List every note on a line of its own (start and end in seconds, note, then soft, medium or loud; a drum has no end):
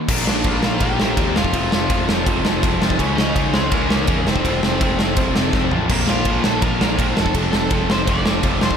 0.09 0.26 A#1 loud
0.09 0.24 A#2 loud
0.09 0.26 F3 loud
0.09 0.26 A#3 loud
0.09 kick loud
0.09 crash loud
0.13 0.97 D4 loud
0.25 0.45 A#1 medium
0.25 0.44 A#2 loud
0.25 0.46 F3 medium
0.25 0.46 A#3 loud
0.25 0.61 D4 medium
0.25 0.64 D5 medium
0.25 snare loud
0.44 0.63 A#1 loud
0.44 0.63 A#2 medium
0.44 0.65 F3 loud
0.44 0.64 A#3 loud
0.44 kick loud
0.44 ride medium
0.63 0.81 A#1 medium
0.63 0.81 A#2 loud
0.63 0.82 F3 loud
0.63 0.82 A#3 loud
0.63 0.81 F4 medium
0.63 0.81 F5 loud
0.63 snare loud
0.80 0.99 A#1 medium
0.80 0.99 A#2 medium
0.80 0.99 F3 medium
0.80 0.99 A#3 loud
0.80 1.33 G4 medium
0.80 1.36 G5 loud
0.80 kick loud
0.80 ride medium
0.98 1.17 A#1 loud
0.98 1.16 A#2 medium
0.98 1.18 F3 medium
0.98 1.17 A#3 loud
0.98 1.16 D4 medium
0.98 snare loud
1.17 1.35 D#2 medium
1.17 1.35 A#2 loud
1.17 1.36 F3 loud
1.17 1.35 A#3 loud
1.17 1.36 D4 medium
1.17 kick loud
1.17 ride medium
1.35 1.53 F1 loud
1.35 1.51 F2 medium
1.35 1.52 C3 loud
1.35 1.53 F3 loud
1.35 2.27 A3 loud
1.35 1.70 F4 medium
1.35 1.71 F5 loud
1.35 snare loud
1.39 2.27 C4 loud
1.44 kick medium
1.52 1.71 F1 loud
1.52 1.71 F2 loud
1.52 1.71 C3 loud
1.52 1.72 F3 loud
1.52 kick loud
1.52 ride medium
1.72 1.89 F1 medium
1.72 1.88 F2 medium
1.72 1.89 C3 loud
1.72 1.91 F3 loud
1.72 2.78 F4 medium
1.72 2.77 F5 medium
1.72 snare loud
1.90 2.08 F1 loud
1.90 2.06 F2 loud
1.90 2.07 C3 medium
1.90 2.08 F3 loud
1.90 kick loud
1.90 ride medium
2.07 2.26 F1 medium
2.07 2.24 F2 loud
2.07 2.25 C3 loud
2.07 2.27 F3 loud
2.07 snare loud
2.26 2.43 F1 loud
2.26 2.42 F2 medium
2.26 2.43 C3 medium
2.26 2.44 F3 loud
2.26 2.44 A3 medium
2.26 kick loud
2.26 ride medium
2.30 2.43 C4 medium
2.43 2.61 F1 medium
2.43 2.61 F2 medium
2.43 2.61 C3 medium
2.43 2.63 F3 loud
2.43 2.80 A3 medium
2.43 2.80 C4 medium
2.43 snare loud
2.48 2.82 F2 medium
2.62 2.81 F1 loud
2.62 2.80 F2 loud
2.62 2.81 C3 loud
2.62 2.82 F3 loud
2.62 kick loud
2.62 ride medium
2.81 2.99 F1 medium
2.81 2.98 F2 medium
2.81 2.99 C3 medium
2.81 2.99 F3 medium
2.81 snare loud
2.90 kick loud
2.99 3.17 C#2 loud
2.99 3.17 C#3 loud
2.99 3.92 F3 loud
2.99 3.17 G#3 loud
2.99 3.17 C#4 loud
2.99 kick loud
2.99 ride medium
3.17 3.35 C#2 loud
3.17 3.34 C#3 loud
3.17 3.34 G#3 loud
3.17 3.35 C#4 loud
3.17 3.51 D#4 medium
3.17 3.51 D#5 loud
3.17 snare loud
3.35 3.53 C#2 loud
3.35 3.52 C#3 medium
3.35 3.53 G#3 medium
3.35 3.54 C#4 loud
3.35 kick loud
3.35 ride medium
3.53 3.71 C#2 medium
3.53 3.70 C#3 loud
3.53 3.71 G#3 loud
3.53 3.71 C4 medium
3.53 3.71 C#4 loud
3.53 3.73 C5 loud
3.53 snare loud
3.71 3.88 C#2 loud
3.71 3.89 C#3 medium
3.71 3.89 G#3 loud
3.71 4.24 A#3 medium
3.71 3.90 C#4 loud
3.71 4.23 A#4 medium
3.71 kick loud
3.71 ride medium
3.89 4.07 C#2 loud
3.89 4.07 C#3 medium
3.89 4.10 F3 medium
3.89 4.09 G#3 medium
3.89 4.09 C#4 loud
3.89 snare loud
3.94 4.07 C#3 medium
4.07 4.26 E2 medium
4.07 4.26 C#3 loud
4.07 4.28 F3 medium
4.07 4.26 G#3 loud
4.07 4.26 C#4 loud
4.07 kick loud
4.07 ride medium
4.26 4.44 F1 medium
4.26 4.43 F2 loud
4.26 4.43 C3 loud
4.26 4.44 F3 loud
4.26 5.17 A3 loud
4.26 4.62 C4 medium
4.26 5.18 C4 loud
4.26 4.62 C5 loud
4.26 snare loud
4.36 kick loud
4.44 4.62 F1 loud
4.44 4.61 F2 loud
4.44 4.62 C3 loud
4.44 4.63 F3 loud
4.44 kick loud
4.44 ride medium
4.63 4.81 F1 loud
4.63 4.80 F2 medium
4.63 4.81 C3 medium
4.63 4.83 F3 loud
4.63 5.69 C4 medium
4.63 5.68 C5 medium
4.63 snare loud
4.81 4.99 F1 loud
4.81 4.98 F2 medium
4.81 4.99 C3 medium
4.81 5.00 F3 loud
4.81 kick loud
4.81 ride medium
4.99 5.17 F1 medium
4.99 5.15 F2 loud
4.99 5.16 C3 loud
4.99 5.17 F3 loud
4.99 snare loud
5.16 5.35 F1 medium
5.16 5.34 F2 medium
5.16 5.34 C3 loud
5.16 5.35 F3 loud
5.16 5.35 A3 medium
5.16 kick loud
5.16 ride medium
5.21 5.34 C4 medium
5.35 5.53 F1 loud
5.35 5.52 F2 medium
5.35 5.53 C3 medium
5.35 5.54 F3 loud
5.35 5.71 A3 medium
5.35 5.71 C4 medium
5.35 snare loud
5.53 5.71 F1 loud
5.53 5.70 F2 medium
5.53 5.70 C3 loud
5.53 5.72 F3 loud
5.53 kick loud
5.53 snare medium
5.71 5.89 A1 medium
5.71 5.88 F2 medium
5.71 5.89 C3 medium
5.71 5.91 F3 medium
5.71 floor tom loud
5.90 6.08 A#1 loud
5.90 6.07 A#2 medium
5.90 6.08 F3 loud
5.90 6.08 A#3 loud
5.90 6.78 D4 loud
5.90 kick loud
5.90 crash loud
6.07 6.25 A#1 loud
6.07 6.26 A#2 medium
6.07 6.26 F3 medium
6.07 6.26 A#3 loud
6.07 6.43 F4 medium
6.07 6.43 F5 medium
6.07 snare loud
6.25 6.43 A#1 medium
6.25 6.42 A#2 medium
6.25 6.44 F3 medium
6.25 6.43 A#3 medium
6.25 kick loud
6.25 ride medium
6.44 6.62 A#1 medium
6.44 6.60 A#2 loud
6.44 6.61 F3 loud
6.44 6.61 A#3 loud
6.44 6.62 A4 medium
6.44 6.62 A5 medium
6.44 snare loud
6.61 6.80 A#1 medium
6.61 6.80 A#2 medium
6.61 6.81 F3 loud
6.61 6.80 A#3 loud
6.61 7.14 A#4 medium
6.61 7.17 A#5 medium
6.61 kick loud
6.61 ride medium
6.79 6.98 A#1 loud
6.79 6.97 A#2 medium
6.79 6.98 F3 loud
6.79 6.98 A#3 loud
6.79 6.97 D4 medium
6.79 snare loud
6.98 7.16 A#1 medium
6.98 7.15 A#2 loud
6.98 7.17 F3 loud
6.98 7.16 A#3 loud
6.98 7.17 D4 medium
6.98 kick loud
6.98 ride medium
7.17 7.34 F1 medium
7.17 7.34 F2 loud
7.17 7.34 C3 loud
7.17 7.35 F3 loud
7.17 8.08 A3 loud
7.17 8.08 C4 loud
7.17 7.34 A4 medium
7.17 7.34 A5 medium
7.17 snare loud
7.26 kick medium
7.34 7.52 F1 loud
7.34 7.52 F2 loud
7.34 7.52 C3 loud
7.34 7.54 F3 loud
7.34 kick loud
7.34 ride medium
7.52 7.71 F1 loud
7.52 7.70 F2 medium
7.52 7.71 C3 loud
7.52 7.72 F3 loud
7.52 7.87 A4 medium
7.52 7.90 A5 loud
7.52 snare loud
7.70 7.89 F1 medium
7.70 7.88 F2 medium
7.70 7.88 C3 loud
7.70 7.90 F3 loud
7.70 kick loud
7.70 ride medium
7.89 8.07 F1 medium
7.89 8.06 F2 loud
7.89 8.06 C3 loud
7.89 8.08 F3 loud
7.89 8.08 C5 medium
7.89 8.08 C6 loud
7.89 snare loud
8.07 8.25 F1 loud
8.07 8.24 F2 medium
8.07 8.25 C3 loud
8.07 8.27 F3 loud
8.07 8.25 A3 medium
8.07 8.23 C4 medium
8.07 8.59 D5 medium
8.07 8.59 D6 loud
8.07 kick loud
8.07 ride medium
8.24 8.43 F1 loud
8.24 8.43 F2 loud
8.24 8.43 C3 medium
8.24 8.44 F3 loud
8.24 8.61 A3 medium
8.24 8.61 C4 medium
8.24 snare loud
8.43 8.61 F1 loud
8.43 8.61 F2 loud
8.43 8.62 C3 loud
8.43 8.63 F3 loud
8.43 kick loud
8.43 ride medium
8.61 8.77 F1 medium
8.61 8.77 F2 loud
8.61 8.77 C3 medium
8.61 8.77 F3 loud
8.61 snare loud
8.65 8.77 C5 medium
8.65 8.77 C6 medium
8.71 kick medium